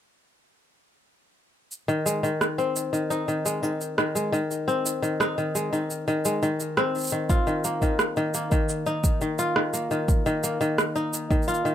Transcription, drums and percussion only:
1.72 cabasa
1.89 cabasa
2.06 cabasa
2.24 cabasa
2.41 cross-stick, cabasa
2.59 cabasa
2.76 cabasa
2.94 cabasa
3.11 cabasa
3.28 cabasa
3.46 cabasa
3.63 cabasa
3.81 cabasa
3.98 cross-stick, cabasa
4.16 cabasa
4.34 cabasa
4.51 cabasa
4.68 cabasa
4.86 cabasa
5.03 cabasa
5.21 cross-stick, cabasa
5.38 cabasa
5.56 cabasa
5.73 cabasa
5.90 cabasa
6.08 cabasa
6.25 cabasa
6.43 cabasa
6.60 cabasa
6.77 cross-stick, cabasa
6.95 cabasa
6.98 cabasa
7.01 cabasa
7.04 cabasa
7.07 cabasa
7.09 cabasa
7.29 kick, cabasa
7.47 cabasa
7.64 cabasa
7.82 kick, cabasa
7.99 cross-stick, cabasa
8.17 cabasa
8.34 cabasa
8.52 kick, cabasa
8.69 cabasa
8.86 cabasa
9.04 kick, cabasa
9.21 cabasa
9.39 cabasa
9.56 cross-stick
9.74 cabasa
9.91 cabasa
10.08 kick, cabasa
10.26 cabasa
10.44 cabasa
10.61 cabasa
10.78 cross-stick, cabasa
10.96 cabasa
11.13 cabasa
11.31 kick, cabasa
11.42 cabasa
11.48 cabasa
11.54 cabasa
11.66 cabasa

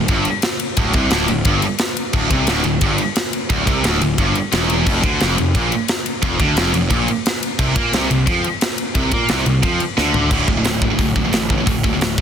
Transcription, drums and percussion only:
0.08 kick, ride
0.25 ride
0.42 snare, ride
0.60 ride
0.77 kick, ride
0.93 kick, ride
1.11 snare, ride
1.28 ride
1.45 kick, ride
1.62 ride
1.79 snare, ride
1.97 ride
2.13 kick, crash
2.31 kick, ride
2.47 snare, ride
2.64 ride
2.81 kick, ride
2.98 ride
3.16 snare, ride
3.33 ride
3.50 kick, ride
3.67 kick, ride
3.84 snare, ride
4.02 ride
4.18 kick, ride
4.35 ride
4.52 snare, ride
4.70 ride
4.87 kick, crash
5.04 kick, ride
5.20 snare, ride
5.38 ride
5.55 kick, ride
5.72 ride
5.88 snare, ride
6.06 ride
6.23 kick, ride
6.40 kick, ride
6.57 snare, ride
6.74 ride
6.90 kick, ride
7.08 ride
7.26 snare, ride
7.43 ride
7.59 kick, crash
7.76 kick, ride
7.93 snare, ride
8.11 ride
8.27 kick, ride
8.44 ride
8.61 snare, ride
8.78 ride
8.95 kick, ride
9.11 kick, ride
9.29 snare, ride
9.46 ride
9.63 kick, ride
9.80 ride
9.98 snare
10.14 floor tom
10.31 kick, crash
10.48 kick
10.65 snare, open hi-hat
10.82 kick
10.99 kick, open hi-hat
11.16 kick
11.33 snare, open hi-hat
11.50 kick
11.67 kick, open hi-hat
11.84 kick
12.01 snare, open hi-hat
12.18 kick

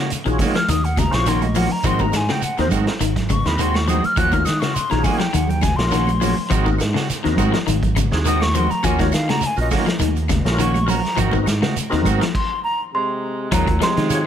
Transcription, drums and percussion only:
0.10 closed hi-hat, shekere
0.25 closed hi-hat, shekere
0.38 kick, open hi-hat, high conga, low conga, claves, shekere
0.55 snare, closed hi-hat, shekere
0.68 snare, closed hi-hat, high conga, shekere
0.84 closed hi-hat, shekere
0.96 kick, snare, closed hi-hat, high conga, claves, shekere
1.12 snare, closed hi-hat, shekere
1.26 snare, closed hi-hat, shekere
1.41 closed hi-hat, high conga, claves, shekere
1.54 open hi-hat, high conga, low conga, shekere
1.70 shekere
1.83 kick, closed hi-hat, claves, shekere
1.99 kick, high conga, shekere
2.13 snare, closed hi-hat, claves, shekere
2.28 snare, high conga, shekere
2.42 closed hi-hat, shekere
2.57 snare, closed hi-hat, shekere
2.71 kick, closed hi-hat, high conga, low conga, claves, shekere
2.87 snare, closed hi-hat, shekere
3.00 closed hi-hat, shekere
3.16 kick, snare, closed hi-hat, low conga, shekere
3.29 kick, closed hi-hat, high conga, claves, shekere
3.45 snare, shekere
3.59 closed hi-hat, shekere
3.74 snare, high conga, claves, shekere
3.88 closed hi-hat, high conga, low conga, shekere
4.03 closed hi-hat, shekere
4.16 kick, closed hi-hat, claves, shekere
4.32 kick, closed hi-hat, high conga, shekere
4.45 snare, closed hi-hat, claves, shekere
4.62 snare, closed hi-hat, shekere
4.76 closed hi-hat, shekere
4.91 snare, closed hi-hat, shekere
5.04 kick, open hi-hat, high conga, low conga, claves, shekere
5.20 snare, closed hi-hat, shekere
5.34 closed hi-hat, shekere
5.48 closed hi-hat, low conga, shekere
5.61 kick, snare, closed hi-hat, high conga, claves, shekere
5.78 snare, closed hi-hat, shekere
5.91 snare, closed hi-hat, shekere
6.07 closed hi-hat, high conga, claves, shekere
6.21 open hi-hat, high conga, low conga, shekere
6.37 shekere
6.50 kick, closed hi-hat, claves, shekere
6.66 kick, high conga, shekere
6.78 snare, closed hi-hat, claves, shekere
6.96 snare, shekere
7.10 snare, closed hi-hat, shekere
7.25 snare, closed hi-hat, shekere
7.38 kick, closed hi-hat, high conga, low conga, claves, shekere
7.53 snare, closed hi-hat, shekere
7.67 closed hi-hat, high conga, shekere
7.83 kick, closed hi-hat, low conga, shekere
7.96 kick, closed hi-hat, high conga, claves, shekere
8.12 snare, shekere
8.25 closed hi-hat, shekere
8.41 snare, high conga, claves, shekere
8.54 closed hi-hat, high conga, low conga, shekere
8.71 closed hi-hat, shekere
8.83 kick, closed hi-hat, claves, shekere
8.99 kick, snare, closed hi-hat, high conga, shekere
9.12 snare, closed hi-hat, claves, shekere
9.28 snare, closed hi-hat, high conga, shekere
9.41 closed hi-hat, shekere
9.57 closed hi-hat, shekere
9.71 kick, snare, open hi-hat, high conga, low conga, claves, shekere
9.86 snare, closed hi-hat, shekere
9.99 closed hi-hat, high conga, shekere
10.16 closed hi-hat, shekere
10.29 kick, snare, closed hi-hat, high conga, claves, shekere
10.45 snare, closed hi-hat, shekere
10.59 closed hi-hat, shekere
10.74 closed hi-hat, high conga, claves, shekere
10.88 open hi-hat, low conga, shekere
11.04 snare, shekere
11.17 kick, closed hi-hat, claves, shekere
11.31 kick, high conga, shekere
11.46 snare, closed hi-hat, claves, shekere
11.62 snare, high conga, shekere
11.76 closed hi-hat, shekere
11.92 snare, closed hi-hat, shekere
12.05 kick, closed hi-hat, high conga, low conga, claves, shekere
12.21 snare, closed hi-hat, shekere
12.35 kick, crash
13.52 kick, closed hi-hat, claves, shekere
13.67 kick, closed hi-hat, high conga
13.81 snare, closed hi-hat, claves, shekere
13.97 snare, closed hi-hat
14.10 closed hi-hat, shekere

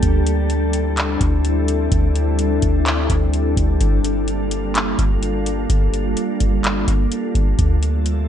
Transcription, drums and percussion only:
0.03 kick, closed hi-hat
0.27 closed hi-hat
0.50 closed hi-hat
0.73 closed hi-hat
0.97 clap, closed hi-hat
1.21 kick, closed hi-hat
1.45 closed hi-hat
1.68 closed hi-hat
1.92 kick, closed hi-hat
2.15 closed hi-hat
2.39 closed hi-hat
2.62 kick, closed hi-hat
2.86 clap, closed hi-hat
3.10 kick, closed hi-hat
3.33 closed hi-hat
3.57 kick, closed hi-hat
3.81 kick, closed hi-hat
4.04 closed hi-hat
4.28 closed hi-hat
4.51 closed hi-hat
4.75 clap, closed hi-hat
4.99 kick, closed hi-hat
5.23 closed hi-hat
5.46 closed hi-hat
5.70 kick, closed hi-hat
5.94 closed hi-hat
6.17 closed hi-hat
6.40 kick, closed hi-hat
6.64 clap, closed hi-hat
6.88 kick, closed hi-hat
7.12 closed hi-hat
7.35 kick, closed hi-hat
7.59 kick, closed hi-hat
7.83 closed hi-hat
8.06 closed hi-hat

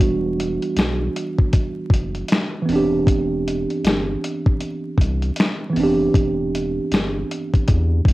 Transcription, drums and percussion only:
0.01 closed hi-hat
0.40 closed hi-hat
0.62 closed hi-hat
0.77 finger snap, snare, closed hi-hat
1.16 closed hi-hat
1.39 kick
1.53 kick, closed hi-hat
1.90 kick, closed hi-hat
2.15 closed hi-hat
2.28 snare, closed hi-hat
2.33 finger snap
2.69 open hi-hat
3.07 kick, closed hi-hat
3.48 closed hi-hat
3.70 closed hi-hat
3.84 finger snap, snare, closed hi-hat
4.24 closed hi-hat
4.46 kick
4.61 closed hi-hat
4.98 kick, closed hi-hat
5.22 closed hi-hat
5.36 snare, closed hi-hat
5.41 finger snap
5.76 open hi-hat
6.14 kick, closed hi-hat
6.55 closed hi-hat
6.92 finger snap, snare, closed hi-hat
7.31 closed hi-hat
7.54 kick, closed hi-hat
7.68 kick, closed hi-hat
8.05 kick, closed hi-hat

